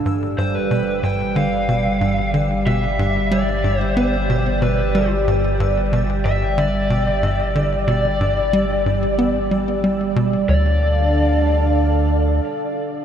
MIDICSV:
0, 0, Header, 1, 6, 480
1, 0, Start_track
1, 0, Tempo, 652174
1, 39, Time_signature, 4, 2, 24, 8
1, 9603, End_track
2, 0, Start_track
2, 0, Title_t, "Lead electric guitar"
2, 0, Program_c, 0, 29
2, 282, Note_on_c, 0, 72, 86
2, 403, Note_off_c, 0, 72, 0
2, 403, Note_on_c, 0, 71, 83
2, 765, Note_on_c, 0, 79, 109
2, 772, Note_off_c, 0, 71, 0
2, 1003, Note_off_c, 0, 79, 0
2, 1006, Note_on_c, 0, 77, 98
2, 1693, Note_off_c, 0, 77, 0
2, 1962, Note_on_c, 0, 76, 109
2, 2446, Note_on_c, 0, 74, 98
2, 2455, Note_off_c, 0, 76, 0
2, 2785, Note_off_c, 0, 74, 0
2, 2785, Note_on_c, 0, 72, 98
2, 2893, Note_off_c, 0, 72, 0
2, 2924, Note_on_c, 0, 72, 94
2, 3403, Note_off_c, 0, 72, 0
2, 3406, Note_on_c, 0, 71, 78
2, 3737, Note_off_c, 0, 71, 0
2, 4600, Note_on_c, 0, 76, 110
2, 4843, Note_on_c, 0, 74, 105
2, 4847, Note_off_c, 0, 76, 0
2, 5792, Note_off_c, 0, 74, 0
2, 5801, Note_on_c, 0, 74, 99
2, 7450, Note_off_c, 0, 74, 0
2, 7723, Note_on_c, 0, 74, 86
2, 9603, Note_off_c, 0, 74, 0
2, 9603, End_track
3, 0, Start_track
3, 0, Title_t, "Synth texture"
3, 0, Program_c, 1, 99
3, 0, Note_on_c, 1, 52, 79
3, 0, Note_on_c, 1, 88, 81
3, 7727, Note_off_c, 1, 88, 0
3, 7728, Note_off_c, 1, 52, 0
3, 9603, End_track
4, 0, Start_track
4, 0, Title_t, "Analog synth pad"
4, 0, Program_c, 2, 89
4, 35, Note_on_c, 2, 55, 78
4, 36, Note_on_c, 2, 67, 70
4, 36, Note_on_c, 2, 74, 84
4, 7688, Note_off_c, 2, 55, 0
4, 7688, Note_off_c, 2, 67, 0
4, 7688, Note_off_c, 2, 74, 0
4, 7720, Note_on_c, 2, 77, 95
4, 7721, Note_on_c, 2, 69, 76
4, 7722, Note_on_c, 2, 50, 84
4, 7722, Note_on_c, 2, 62, 72
4, 9603, Note_off_c, 2, 50, 0
4, 9603, Note_off_c, 2, 62, 0
4, 9603, Note_off_c, 2, 69, 0
4, 9603, Note_off_c, 2, 77, 0
4, 9603, End_track
5, 0, Start_track
5, 0, Title_t, "Analog synth bass"
5, 0, Program_c, 3, 38
5, 42, Note_on_c, 3, 43, 78
5, 262, Note_off_c, 3, 43, 0
5, 281, Note_on_c, 3, 43, 90
5, 428, Note_off_c, 3, 43, 0
5, 522, Note_on_c, 3, 47, 76
5, 609, Note_off_c, 3, 47, 0
5, 760, Note_on_c, 3, 43, 74
5, 908, Note_off_c, 3, 43, 0
5, 1001, Note_on_c, 3, 50, 84
5, 1089, Note_off_c, 3, 50, 0
5, 1241, Note_on_c, 3, 47, 73
5, 1388, Note_off_c, 3, 47, 0
5, 1479, Note_on_c, 3, 43, 75
5, 1627, Note_off_c, 3, 43, 0
5, 1721, Note_on_c, 3, 50, 76
5, 1868, Note_off_c, 3, 50, 0
5, 1961, Note_on_c, 3, 47, 88
5, 2108, Note_off_c, 3, 47, 0
5, 2201, Note_on_c, 3, 43, 95
5, 2348, Note_off_c, 3, 43, 0
5, 2439, Note_on_c, 3, 55, 110
5, 2528, Note_off_c, 3, 55, 0
5, 2679, Note_on_c, 3, 43, 76
5, 2827, Note_off_c, 3, 43, 0
5, 2920, Note_on_c, 3, 59, 83
5, 3068, Note_off_c, 3, 59, 0
5, 3162, Note_on_c, 3, 47, 74
5, 3309, Note_off_c, 3, 47, 0
5, 3399, Note_on_c, 3, 47, 76
5, 3547, Note_off_c, 3, 47, 0
5, 3642, Note_on_c, 3, 55, 78
5, 3788, Note_off_c, 3, 55, 0
5, 3883, Note_on_c, 3, 43, 85
5, 4103, Note_off_c, 3, 43, 0
5, 4121, Note_on_c, 3, 43, 94
5, 4268, Note_off_c, 3, 43, 0
5, 4362, Note_on_c, 3, 47, 78
5, 4449, Note_off_c, 3, 47, 0
5, 4602, Note_on_c, 3, 43, 76
5, 4748, Note_off_c, 3, 43, 0
5, 4841, Note_on_c, 3, 50, 89
5, 4929, Note_off_c, 3, 50, 0
5, 5080, Note_on_c, 3, 47, 74
5, 5227, Note_off_c, 3, 47, 0
5, 5320, Note_on_c, 3, 43, 80
5, 5468, Note_off_c, 3, 43, 0
5, 5560, Note_on_c, 3, 50, 81
5, 5708, Note_off_c, 3, 50, 0
5, 5797, Note_on_c, 3, 47, 83
5, 5946, Note_off_c, 3, 47, 0
5, 6040, Note_on_c, 3, 43, 89
5, 6187, Note_off_c, 3, 43, 0
5, 6280, Note_on_c, 3, 55, 109
5, 6368, Note_off_c, 3, 55, 0
5, 6521, Note_on_c, 3, 43, 75
5, 6668, Note_off_c, 3, 43, 0
5, 6761, Note_on_c, 3, 59, 91
5, 6908, Note_off_c, 3, 59, 0
5, 7001, Note_on_c, 3, 55, 73
5, 7222, Note_off_c, 3, 55, 0
5, 7240, Note_on_c, 3, 55, 78
5, 7388, Note_off_c, 3, 55, 0
5, 7479, Note_on_c, 3, 47, 106
5, 7627, Note_off_c, 3, 47, 0
5, 7719, Note_on_c, 3, 38, 93
5, 7942, Note_off_c, 3, 38, 0
5, 9603, End_track
6, 0, Start_track
6, 0, Title_t, "Sub bass"
6, 0, Program_c, 4, 38
6, 41, Note_on_c, 4, 31, 88
6, 7696, Note_off_c, 4, 31, 0
6, 7717, Note_on_c, 4, 38, 94
6, 9129, Note_off_c, 4, 38, 0
6, 9603, End_track
0, 0, End_of_file